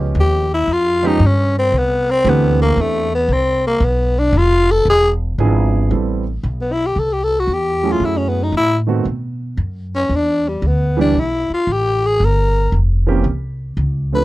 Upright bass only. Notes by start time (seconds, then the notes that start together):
Already playing: C#2
0.15 D#2
0.67 F2
1.20 G2
1.72 C2
2.25 D2
2.76 E2
3.28 C2
3.80 B1
4.33 F1
4.85 E1
5.38 G#1
5.91 A1
6.43 B1
6.96 C2
7.47 E2
8.00 F#2
8.52 A2
9.05 B2
9.57 F#2
10.09 E2
10.62 D2
11.14 B1
11.50 muted upright bass stroke
11.67 A1
12.20 G1
12.72 F1
13.24 C2
13.77 C#2